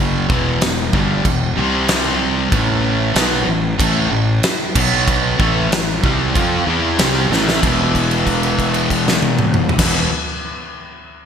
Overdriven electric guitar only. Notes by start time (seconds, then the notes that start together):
Already playing: F#2 C#3 F#3
0.30 E2 B2 E3
0.62 E2 B2
0.92 G2 D3 G3
1.23 E2 B2
1.55 C3 G3 C4
2.51 A2 E3 A3
3.13 B2 F#3 B3
3.46 A2 E3
3.78 A2 E3 A3
4.11 A2 E3
4.75 B2 F#3 B3
5.39 A2 E3 A3
5.70 A2 E3
6.02 C3 G3 C4
6.33 F3 C4 F4
6.65 E3 B3 E4
6.98 C3 G3 C4
7.30 A2 E3 A3
7.61 E2 B2
7.65 E3
9.78 E2 B2
9.82 E3